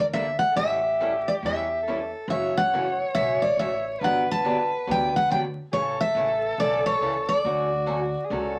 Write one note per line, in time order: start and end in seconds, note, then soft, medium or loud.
0.00 0.39 D2 medium
0.00 0.29 A#4 loud
0.13 0.25 D3 medium
0.13 0.25 G3 medium
0.13 0.25 A#3 medium
0.13 0.25 D4 medium
0.13 0.26 A4 medium
0.13 0.39 E5 loud
0.39 0.56 F#5 medium
0.51 0.58 A4 medium
0.56 1.25 A1 medium
0.56 0.78 E3 medium
0.56 0.78 G3 medium
0.56 0.78 C#4 medium
0.56 0.79 E4 medium
0.56 1.82 G4 loud
0.56 0.79 A4 medium
0.56 1.29 E5 loud
1.00 1.11 E3 medium
1.00 1.11 G3 medium
1.00 1.12 C#4 medium
1.00 1.12 E4 medium
1.00 1.12 A4 loud
1.28 1.33 D5 medium
1.43 2.12 E2 medium
1.43 1.65 E3 medium
1.43 1.65 G3 medium
1.43 1.65 C#4 medium
1.43 1.65 E4 medium
1.43 1.66 A4 medium
1.43 2.10 E5 medium
1.83 2.30 A4 medium
1.87 1.98 E3 medium
1.87 1.98 G3 medium
1.87 1.98 C#4 medium
1.87 1.99 E4 medium
1.87 1.98 A4 medium
2.28 2.97 F#1 medium
2.28 2.51 C#3 medium
2.28 2.51 E3 medium
2.28 2.51 A3 medium
2.28 2.51 C#4 medium
2.28 2.51 F#4 medium
2.28 4.01 C#5 loud
2.28 2.57 E5 medium
2.57 2.97 F#5 loud
2.73 2.84 C#3 medium
2.73 2.84 E3 medium
2.73 2.85 A3 medium
2.73 2.84 C#4 medium
2.73 2.85 F#4 medium
3.15 3.52 B1 medium
3.15 3.37 C#3 medium
3.15 3.37 E3 medium
3.15 3.38 A3 medium
3.15 3.38 C#4 medium
3.15 3.38 F#4 medium
3.15 3.43 E5 loud
3.42 3.57 D5 medium
3.57 3.94 A1 medium
3.57 3.70 C#3 medium
3.57 3.70 E3 medium
3.57 3.71 A3 medium
3.57 3.71 C#4 medium
3.57 3.71 F#4 medium
3.57 3.84 E5 medium
4.00 4.70 G1 medium
4.00 4.23 D3 medium
4.00 4.23 F#3 medium
4.00 4.23 B3 medium
4.00 4.23 D4 medium
4.00 4.24 G4 medium
4.00 5.50 B4 loud
4.04 4.28 F#5 medium
4.31 4.70 A5 loud
4.44 4.56 D3 medium
4.44 4.56 F#3 medium
4.44 4.56 B3 medium
4.44 4.56 D4 loud
4.44 4.56 G4 loud
4.87 5.56 D2 medium
4.87 5.09 D3 medium
4.87 5.09 F#3 medium
4.87 5.09 B3 medium
4.87 5.09 D4 medium
4.87 5.09 G4 medium
4.91 5.16 G5 medium
5.16 5.30 F#5 medium
5.30 5.41 D3 medium
5.30 5.42 F#3 medium
5.30 5.42 B3 medium
5.30 5.42 D4 medium
5.30 5.42 G4 medium
5.30 5.39 G5 medium
5.72 6.08 A1 medium
5.72 5.95 C#3 medium
5.72 5.95 E3 medium
5.72 5.95 A3 medium
5.72 5.95 C#4 medium
5.72 7.41 A4 loud
5.72 5.95 A4 medium
5.72 5.98 C#5 medium
6.01 6.59 E5 loud
6.15 6.52 A1 medium
6.15 6.28 C#3 medium
6.15 6.28 E3 medium
6.15 6.28 A3 medium
6.15 6.28 C#4 medium
6.15 6.28 A4 medium
6.58 6.95 B1 medium
6.58 6.81 C#3 medium
6.58 6.81 E3 medium
6.58 6.81 A3 medium
6.58 6.81 C#4 medium
6.58 6.81 A4 medium
6.58 6.85 D5 medium
6.86 7.28 C#5 loud
7.00 7.38 C#2 medium
7.00 7.13 C#3 medium
7.00 7.14 E3 medium
7.00 7.14 A3 medium
7.00 7.14 C#4 medium
7.00 7.14 A4 medium
7.29 8.59 D5 medium
7.44 8.14 D2 medium
7.44 7.66 D3 medium
7.44 7.67 F#3 medium
7.44 7.67 A3 medium
7.44 7.67 C#4 medium
7.44 8.26 F#4 loud
7.44 7.67 F#4 medium
7.86 7.99 D3 medium
7.86 7.99 F#3 medium
7.86 7.99 A3 medium
7.86 7.99 C#4 loud
7.86 7.99 F#4 medium
8.25 8.32 G#4 medium
8.30 8.59 C#2 medium
8.30 8.53 D3 medium
8.30 8.53 F#3 medium
8.30 8.53 A3 medium
8.30 8.53 C#4 medium
8.30 8.53 F#4 medium
8.30 8.59 A4 loud